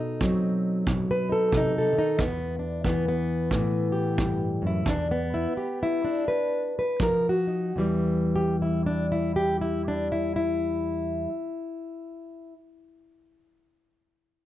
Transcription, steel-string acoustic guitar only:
0.00 0.86 B2 medium
0.00 1.28 D#4 soft
0.00 1.09 A4 soft
0.22 1.93 F#3 medium
0.22 2.17 C4 soft
0.87 2.16 B2 medium
1.11 1.32 B4 medium
1.29 1.54 D#4 soft
1.29 1.76 A4 medium
1.53 1.93 C3 medium
1.57 1.97 D#4 medium
1.78 2.21 A4 medium
1.93 2.19 D#3 medium
1.99 2.20 D#4 medium
2.18 3.51 E2 medium
2.18 2.59 B3 medium
2.59 2.85 D4 soft
2.85 3.49 E3 medium
2.85 3.07 B3 medium
3.08 4.42 B3 medium
3.52 4.88 A2 medium
3.52 4.85 E3 soft
3.92 4.64 G4 soft
4.17 4.60 G2 medium
4.62 4.87 F#2 medium
4.67 4.88 E4 medium
4.87 5.46 E2 medium
4.87 5.11 D4 medium
5.11 6.04 B3 medium
5.34 5.57 E4 medium
5.57 5.81 G4 medium
5.83 6.28 E4 medium
6.05 6.72 D4 medium
6.28 6.76 B4 medium
6.79 7.02 B4 medium
7.01 7.72 F3 medium
7.01 7.26 A#4 medium
7.29 7.77 F#4 medium
7.47 7.73 D#4 soft
7.76 11.26 E2 medium
7.76 11.28 E3 medium
7.76 11.29 G3 medium
8.36 8.55 G4 medium
8.62 8.81 E4 medium
8.86 9.06 D4 medium
9.12 9.31 E4 medium
9.36 9.56 G4 medium
9.61 9.81 E4 medium
9.88 10.07 D4 medium
10.12 10.32 E4 medium
10.36 12.53 E4 medium

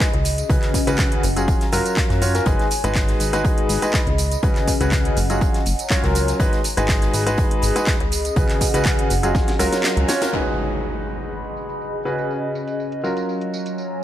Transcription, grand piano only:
0.50 0.77 C#3 medium
0.50 0.77 C#4 medium
0.50 0.77 F#4 medium
0.50 0.77 G#4 medium
0.50 0.77 B4 medium
0.87 1.22 C#3 medium
0.87 1.22 C#4 medium
0.87 1.22 F#4 medium
0.87 1.22 G#4 medium
0.87 1.22 B4 loud
1.36 1.63 F#3 medium
1.36 1.63 C#4 medium
1.36 1.63 F4 medium
1.36 1.63 F#4 medium
1.36 1.63 G#4 medium
1.72 2.19 F#3 medium
1.72 2.19 C#4 medium
1.72 2.19 F4 medium
1.72 2.19 F#4 medium
1.72 2.19 A#4 loud
2.22 2.33 C#4 medium
2.22 2.33 F4 medium
2.22 2.33 F#4 medium
2.22 2.33 C#5 medium
2.35 2.45 C#4 medium
2.35 2.45 F4 medium
2.35 2.45 F#4 medium
2.35 2.45 A#4 medium
2.46 2.64 G#3 medium
2.46 2.64 D#4 medium
2.46 2.64 F#4 medium
2.46 2.64 G#4 medium
2.46 2.64 B4 loud
2.84 3.30 G#3 medium
2.84 3.30 D#4 medium
2.84 3.30 F#4 medium
2.84 3.30 G#4 medium
2.84 3.30 B4 loud
3.33 3.79 G#3 medium
3.33 3.79 D#4 medium
3.33 3.79 F#4 medium
3.33 3.79 G#4 medium
3.33 3.79 B4 loud
3.82 3.99 G#3 medium
3.82 3.99 D#4 medium
3.82 3.99 F#4 medium
3.82 3.99 G#4 medium
3.82 3.99 B4 loud
4.43 4.70 C#3 medium
4.43 4.70 C#4 medium
4.43 4.70 F#4 medium
4.43 4.70 G#4 medium
4.43 4.70 B4 medium
4.81 5.15 C#3 medium
4.81 5.15 C#4 medium
4.81 5.15 F#4 medium
4.81 5.15 G#4 medium
4.81 5.15 B4 loud
5.30 5.57 F#3 medium
5.30 5.57 C#4 medium
5.30 5.57 F4 medium
5.30 5.57 F#4 medium
5.30 5.57 G#4 medium
5.90 6.02 F#3 medium
5.90 6.02 C#4 medium
5.90 6.02 F4 medium
5.90 6.02 F#4 medium
5.90 6.02 C#5 medium
6.04 6.37 F#3 medium
6.04 6.37 C#4 medium
6.04 6.37 F4 medium
6.04 6.37 F#4 medium
6.04 6.37 A#4 medium
6.40 6.57 G#3 loud
6.40 6.57 D#4 medium
6.40 6.57 F#4 medium
6.40 6.57 G#4 medium
6.40 6.57 B4 loud
6.77 7.23 G#3 medium
6.77 7.23 D#4 medium
6.77 7.23 F#4 medium
6.77 7.23 G#4 medium
6.77 7.23 B4 loud
7.26 7.73 G#3 loud
7.26 7.73 D#4 medium
7.26 7.73 F#4 medium
7.26 7.73 G#4 medium
7.26 7.73 B4 loud
7.76 7.92 G#3 medium
7.76 7.92 D#4 medium
7.76 7.92 F#4 medium
7.76 7.92 G#4 medium
7.76 7.92 B4 loud
8.36 8.64 C#3 medium
8.36 8.64 C#4 medium
8.36 8.64 F#4 medium
8.36 8.64 G#4 medium
8.36 8.64 B4 medium
8.74 9.09 C#3 medium
8.74 9.09 C#4 medium
8.74 9.09 F#4 medium
8.74 9.09 G#4 medium
8.74 9.09 B4 loud
9.23 9.50 F#3 medium
9.23 9.50 C#4 medium
9.23 9.50 F4 medium
9.23 9.50 F#4 medium
9.23 9.50 G#4 medium
9.59 10.06 F#3 medium
9.59 10.06 C#4 medium
9.59 10.06 F4 medium
9.59 10.06 F#4 medium
9.59 10.06 A#4 loud
10.08 10.20 C#4 medium
10.08 10.20 F4 medium
10.08 10.20 F#4 medium
10.08 10.20 C#5 medium
10.22 10.31 C#4 medium
10.22 10.31 F4 medium
10.22 10.31 F#4 medium
10.22 10.31 A#4 medium
10.33 12.03 G#3 medium
10.33 12.03 D#4 medium
10.33 12.03 F#4 medium
10.33 12.03 G#4 medium
10.33 12.03 B4 medium
12.05 13.01 C#3 medium
12.05 13.01 C#4 medium
12.05 13.01 F#4 medium
12.05 13.01 G#4 medium
12.05 13.01 B4 medium
13.04 14.04 F#3 medium
13.04 14.04 C#4 medium
13.04 14.04 F4 medium
13.04 14.04 F#4 medium
13.04 14.04 A#4 medium

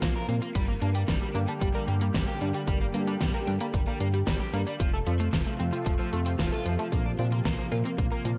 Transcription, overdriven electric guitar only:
0.02 0.12 A#3 medium
0.15 0.25 A#4 medium
0.28 0.35 A#3 medium
0.41 0.48 A#3 loud
0.55 0.65 G3 medium
0.68 0.72 A#3 medium
0.81 0.88 A#3 medium
0.95 1.01 G3 medium
1.08 1.18 G3 medium
1.21 1.28 G3 medium
1.34 1.39 D4 medium
1.48 1.52 G3 medium
1.61 1.68 G3 medium
1.74 1.84 G3 loud
1.87 1.94 A#3 medium
2.01 2.05 G3 medium
2.14 2.24 G3 medium
2.28 2.38 G4 medium
2.41 2.48 G3 medium
2.54 2.61 G3 loud
2.67 2.77 G3 medium
2.81 2.85 A#3 medium
2.94 3.01 A#3 medium
3.07 3.14 G3 medium
3.21 3.31 G3 medium
3.34 3.41 G3 medium
3.47 3.51 D4 medium
3.60 3.64 G3 medium
3.74 3.80 G3 medium
3.87 3.97 G3 loud
4.00 4.07 A#3 medium
4.14 4.18 G3 medium
4.27 4.37 G3 medium
4.40 4.50 G4 medium
4.53 4.60 G3 medium
4.67 4.73 G3 loud
4.80 4.90 F3 medium
4.93 4.97 A3 medium
5.06 5.13 A3 medium
5.20 5.26 F3 medium
5.33 5.43 F3 medium
5.46 5.53 F3 medium
5.59 5.63 C4 medium
5.73 5.77 F3 medium
5.86 5.93 F3 medium
5.99 6.09 F3 loud
6.13 6.19 A3 medium
6.26 6.30 F3 medium
6.39 6.49 F3 medium
6.53 6.63 F4 medium
6.66 6.72 F3 medium
6.79 6.86 F3 loud
6.92 7.02 A#3 medium
7.06 7.10 D4 medium
7.19 7.25 D4 medium
7.32 7.39 A#3 medium
7.45 7.55 A#3 medium
7.59 7.65 A#3 medium
7.72 7.76 F4 medium
7.85 7.89 A#3 medium
7.99 8.05 A#3 medium
8.12 8.22 A#3 medium
8.25 8.29 A#3 medium

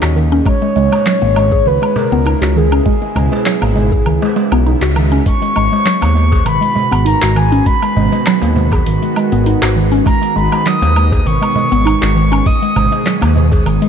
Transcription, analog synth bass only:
0.03 0.41 D#2 medium
0.76 0.88 C#2 loud
1.22 1.61 G#1 medium
1.66 1.78 C#2 medium
2.12 2.35 C#2 medium
2.42 2.81 C#2 medium
3.16 3.28 C#2 loud
3.62 4.01 G#1 medium
4.06 4.18 C#2 medium
4.52 4.75 B1 loud
4.82 5.21 C#2 medium
5.57 5.69 G#1 loud
6.03 6.41 D#2 medium
6.46 6.58 G#1 medium
6.92 7.15 G#1 medium
7.22 7.61 G#1 medium
7.96 8.08 G#1 loud
8.42 8.81 D#2 medium
8.86 8.98 G#1 medium
9.32 9.55 G#1 medium
9.62 10.01 G#1 medium
10.36 10.48 G#1 loud
10.82 11.21 D#2 medium
11.26 11.38 G#1 medium
11.72 11.95 G#1 medium
12.02 12.41 G#1 medium
12.76 12.88 G#1 loud
13.22 13.61 D#2 medium
13.66 13.78 G#1 medium

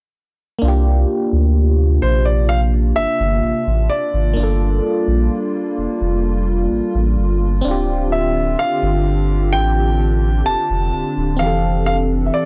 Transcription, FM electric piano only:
0.59 4.31 A#3 medium
0.59 4.33 D4 medium
0.65 4.35 F4 medium
0.65 4.36 G4 medium
4.33 7.60 A#3 medium
4.33 7.61 D4 medium
4.40 7.63 F4 medium
4.40 7.64 A4 medium
7.61 11.34 C4 medium
7.61 11.36 D4 medium
7.68 11.38 F4 medium
7.68 11.39 G4 medium
11.37 12.45 E3 medium
11.37 12.45 C4 medium
11.43 12.45 G4 medium
11.43 12.45 A4 medium

